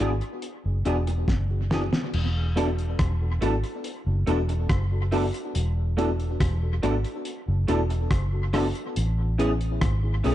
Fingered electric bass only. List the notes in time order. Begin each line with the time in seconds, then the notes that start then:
0.01 G#1
0.65 F#1
0.86 E1
1.28 F#1
2.14 E1
3.00 E1
3.42 G#1
4.06 F#1
4.28 E1
4.70 F#1
5.56 E1
6.41 E1
6.84 G#1
7.48 F#1
7.69 E1
8.11 F#1
8.97 A1
9.82 G#1
10.26 B1